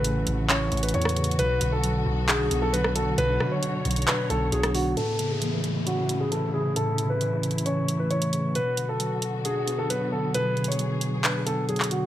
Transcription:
Already playing: A1 A2 C#3 E3 A3 C#4 F#4 B4
0.04 E3, closed hi-hat
0.27 A1, closed hi-hat
0.49 C#4 C#5, clap, closed hi-hat
0.71 A1 A3, closed hi-hat
0.77 closed hi-hat
0.83 B4, closed hi-hat
0.89 closed hi-hat
0.94 E2 E3 C#5, closed hi-hat
1.02 cross-stick, closed hi-hat
1.09 closed hi-hat
1.16 C#3, closed hi-hat, open hi-hat
1.24 closed hi-hat
1.31 closed hi-hat
1.39 B1 B2 D3 F#3 B3 B4, closed hi-hat
1.61 B1 D3, closed hi-hat
1.72 A4
1.84 F#3, closed hi-hat
2.06 B1
2.28 D4 G#4, clap, closed hi-hat
2.51 B1 B3, closed hi-hat
2.62 A4
2.73 F#3 B4, closed hi-hat
2.84 cross-stick
2.95 D3 A4, closed hi-hat
3.18 B1 B2 B4 C#5, closed hi-hat
3.40 B2 D3, cross-stick
3.52 C#5
3.63 F#3, closed hi-hat
3.85 B1, closed hi-hat
3.91 closed hi-hat
3.96 closed hi-hat
4.02 closed hi-hat
4.07 D4 B4, clap, closed hi-hat
4.30 B1 B3 A4, closed hi-hat
4.52 B1 F#3 G#4, closed hi-hat
4.63 cross-stick, closed hi-hat
4.75 D3 F#4, open hi-hat
4.97 A2 C#3 E3 A3 E4 A4, closed hi-hat, downlifter
5.19 C#3, closed hi-hat
5.31 G#4
5.42 E3, closed hi-hat
5.64 closed hi-hat
5.87 C#4 F#4, closed hi-hat
6.09 A3, closed hi-hat
6.20 G#4
6.31 E3 A4, closed hi-hat
6.54 C#3 G#4
6.76 A2 A3 A4, closed hi-hat
6.98 C#3, closed hi-hat
7.10 B4
7.21 E3, closed hi-hat
7.43 closed hi-hat
7.51 closed hi-hat
7.58 closed hi-hat
7.66 C#4 C#5, closed hi-hat
7.88 A3, closed hi-hat
7.99 B4
8.11 E3 C#5, closed hi-hat
8.22 closed hi-hat
8.33 C#3, closed hi-hat
8.55 B2 D3 F#3 B3 F#4 B4, closed hi-hat
8.77 D3, closed hi-hat
8.89 A4
9.00 F#3, closed hi-hat
9.22 closed hi-hat
9.45 D4 G#4, closed hi-hat
9.67 B3, closed hi-hat
9.79 A4
9.90 F#3 B4, closed hi-hat
10.12 D3 A4
10.34 B2 G#4 B4, closed hi-hat
10.57 D3, closed hi-hat
10.64 C#5, closed hi-hat
10.72 closed hi-hat
10.79 F#3, closed hi-hat
11.01 closed hi-hat
11.24 D4 B4, clap, closed hi-hat
11.46 B3 A4, closed hi-hat
11.69 F#3 G#4, closed hi-hat
11.76 clap, closed hi-hat
11.84 closed hi-hat
11.91 D3 F#4, closed hi-hat

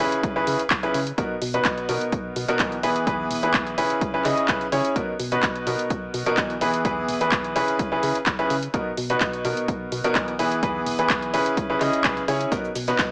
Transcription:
0.00 C#3 C#4 E4 G#4 B4
0.12 closed hi-hat
0.23 C#2, kick, closed hi-hat
0.36 C#3 C#4 E4 G#4 B4
0.47 C#3, open hi-hat
0.59 closed hi-hat
0.70 C#2, kick, clap, closed hi-hat
0.83 C#3 C#4 E4 G#4 B4, closed hi-hat
0.94 C#3, open hi-hat
1.07 closed hi-hat
1.18 B1 B2 B3 D#4 F#4 A#4, kick, closed hi-hat
1.42 B2, open hi-hat
1.54 B2 B3 D#4 F#4 B4, closed hi-hat
1.65 B1, kick, clap, closed hi-hat
1.78 closed hi-hat
1.89 B2 B3 D#4 F#4 A#4, open hi-hat
2.01 closed hi-hat
2.12 B1, kick, closed hi-hat
2.36 B2, open hi-hat
2.48 B2 B3 D#4 F#4 A#4, closed hi-hat
2.59 B1 E3 B3 D#4 F#4 A#4, kick, clap, closed hi-hat
2.72 closed hi-hat
2.83 E1 E3 B3 E4 G#4 B4, open hi-hat
2.96 closed hi-hat
3.07 E2 E3 B3 E4 G#4 B4, kick, closed hi-hat
3.31 E1, open hi-hat
3.43 E3 B3 E4 G#4 B4, closed hi-hat
3.54 E2, kick, clap, closed hi-hat
3.67 closed hi-hat
3.78 E1 C#3 C#4 E4 G#4 B4, open hi-hat
3.90 closed hi-hat
4.01 C#2, kick, closed hi-hat
4.14 C#3 C#4 E4 G#4 B4
4.25 C#3 C#4 E4 G#4 D#5, clap, open hi-hat
4.37 closed hi-hat
4.48 C#2 C#3 C#4 E4 G#4 B4, kick, clap, closed hi-hat
4.61 closed hi-hat
4.72 C#3 C#4 E4 G#4 C#5, open hi-hat
4.85 closed hi-hat
4.96 B1 B2 B3 D#4 F#4 A#4, kick, closed hi-hat
5.19 B2, open hi-hat
5.32 B2 B3 D#4 F#4 B4, closed hi-hat
5.43 B1, kick, clap, closed hi-hat
5.56 closed hi-hat
5.67 B2 B3 D#4 F#4 A#4, open hi-hat
5.79 closed hi-hat
5.90 B1, kick, closed hi-hat
6.14 B2, open hi-hat
6.26 B2 B3 D#4 F#4 A#4, closed hi-hat
6.37 B1 E3 B3 D#4, kick, clap, closed hi-hat
6.50 closed hi-hat
6.61 E1 E3 B3 E4 G#4 B4, open hi-hat
6.74 closed hi-hat
6.85 E2 E3 B3 E4 G#4 B4, kick, closed hi-hat
7.08 E1, open hi-hat
7.21 E3 B3 E4 G#4 B4, closed hi-hat
7.32 E2, kick, clap, closed hi-hat
7.44 closed hi-hat
7.56 E1 C#3 C#4 E4 G#4 B4, open hi-hat
7.68 closed hi-hat
7.79 C#2, kick, closed hi-hat
7.92 C#3 C#4 E4 G#4 B4
8.03 C#3, open hi-hat
8.15 closed hi-hat
8.26 C#2, kick, clap, closed hi-hat
8.39 C#3 C#4 E4 G#4 B4, closed hi-hat
8.50 C#3, open hi-hat
8.63 closed hi-hat
8.74 B1 B2 B3 D#4 F#4 A#4, kick, closed hi-hat
8.97 B2, open hi-hat
9.10 B2 B3 D#4 F#4 B4, closed hi-hat
9.21 B1, kick, clap, closed hi-hat
9.33 closed hi-hat
9.45 B2 B3 D#4 F#4 A#4, open hi-hat
9.57 closed hi-hat
9.68 B1, kick, closed hi-hat
9.92 B2, open hi-hat
10.04 B2 B3 D#4 F#4 A#4, closed hi-hat
10.15 B1 E3 B3 D#4 F#4, kick, clap, closed hi-hat
10.28 closed hi-hat
10.39 E1 E3 B3 E4 G#4 B4, open hi-hat
10.52 closed hi-hat
10.63 E2 E3 B3 E4 G#4 B4, kick, closed hi-hat
10.86 E1, open hi-hat
10.99 E3 B3 E4 G#4 B4, closed hi-hat
11.10 E2, kick, clap, closed hi-hat
11.22 closed hi-hat
11.34 E1 C#3 C#4 E4 G#4 B4, open hi-hat
11.46 closed hi-hat
11.57 C#2, kick, closed hi-hat
11.70 C#3 C#4 E4 G#4 B4
11.80 C#3 C#4 E4 G#4 D#5, clap, open hi-hat
11.93 closed hi-hat
12.04 C#2 C#3 C#4 E4 G#4 B4, kick, clap, closed hi-hat
12.17 closed hi-hat
12.28 C#3 C#4 E4 G#4 C#5, open hi-hat
12.41 closed hi-hat
12.52 B1 B2 B3 D#4 F#4 A#4, kick, closed hi-hat, shaker
12.65 shaker
12.75 B2, closed hi-hat, open hi-hat, shaker
12.88 B2 B3 D#4 F#4 B4, snare, closed hi-hat, shaker
12.99 B1, kick, snare, clap, closed hi-hat, shaker

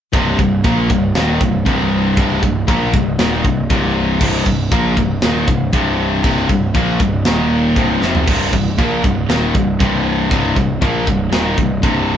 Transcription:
0.13 C1 C2 G2 C3, kick, china
0.38 C1 C2 G2, kick
0.64 A#1 A#2 F3 A#3, kick, china
0.90 C1 C2 G2, kick
1.15 D#1 D#2 A#2 D#3, snare, china
1.41 C1 C2 G2, kick
1.65 C1 C2 G2 C3, kick, china
2.16 C1 C2 G2 C3, kick, china
2.42 C1 C2 G2, kick
2.67 A#1 A#2 F3 A#3, kick, china
2.93 C1 C2 G2, kick
3.19 D#1 D#2 A#2 D#3, snare, china
3.44 C1 C2 G2, kick
3.70 C1 C2 G2 C3, kick, china
4.20 C1 C2 G2 C3, kick, china, crash
4.45 C1 C2 G2, kick
4.71 A#1 A#2 F3 A#3, kick, china
4.97 C1 C2 G2, kick
5.22 D#1 D#2 A#2 D#3, snare, china
5.47 C1 C2 G2, kick
5.73 C1 C2 G2 C3, kick, china
6.24 C1 C2 G2 C3, kick, china
6.49 C1 C2 G2, kick
6.74 A#1 A#2 F3 A#3, kick, china
7.00 C1 C2 G2, kick
7.25 D#1 D#2 A#2 D#3, snare, china
7.76 C1 C2 G2 C3, kick, china
8.02 F1 F2 C3 F3, snare
8.15 floor tom
8.27 C1 C2 G2 C3, kick, china, crash
8.53 C1 C2 G2, kick
8.78 A#1 A#2 F3 A#3, kick, china
9.04 C1 C2 G2, kick
9.29 D#1 D#2 A#2 D#3, snare, china
9.54 C1 C2 G2, kick
9.80 C1 C2 G2 C3, kick, china
10.31 C1 C2 G2 C3, kick, china
10.56 C1 C2 G2, kick
10.81 A#1 A#2 F3 A#3, kick, china
11.07 C1 C2 G2, kick
11.32 D#1 D#2 A#2 D#3, snare, china
11.57 C1 C2 G2, kick
11.82 C1 C2 G2 C3, kick, china

